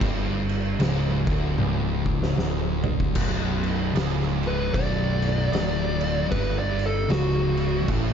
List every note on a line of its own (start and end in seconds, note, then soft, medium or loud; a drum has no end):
0.00 0.76 G1 loud
0.00 0.78 G2 loud
0.00 kick loud
0.00 crash medium
0.49 crash medium
0.79 1.24 C#1 loud
0.79 1.25 C#2 loud
0.79 snare loud
0.79 crash medium
1.25 1.57 D1 medium
1.25 1.56 D2 loud
1.25 kick loud
1.25 crash medium
1.57 2.33 C#1 loud
1.57 2.37 C#2 loud
1.57 high tom medium
2.06 kick medium
2.23 snare medium
2.37 3.12 D1 loud
2.37 3.15 D2 loud
2.37 snare loud
2.84 floor tom loud
3.00 kick loud
3.15 3.91 B0 loud
3.15 3.93 B1 loud
3.15 kick loud
3.15 crash loud
3.15 crash medium
3.63 crash medium
3.94 4.70 C#1 medium
3.94 4.71 C#2 loud
3.94 snare loud
3.94 crash medium
4.22 snare soft
4.43 crash medium
4.48 4.73 B4 medium
4.72 5.49 B0 loud
4.72 5.51 B1 loud
4.72 6.27 D5 loud
4.72 kick loud
4.72 crash medium
5.22 crash medium
5.51 6.27 D1 medium
5.51 6.29 D2 loud
5.51 snare loud
5.51 crash medium
6.01 crash medium
6.29 7.06 G1 loud
6.29 7.08 G2 loud
6.29 6.56 B4 medium
6.29 kick loud
6.29 crash medium
6.59 6.83 D5 medium
6.79 crash medium
6.86 7.10 A4 medium
7.09 7.84 C#1 medium
7.09 7.87 C#2 loud
7.09 7.86 F#4 loud
7.09 snare loud
7.09 crash medium
7.57 crash medium
7.88 8.13 A1 loud
7.88 8.13 A2 loud
7.88 kick loud
7.88 crash medium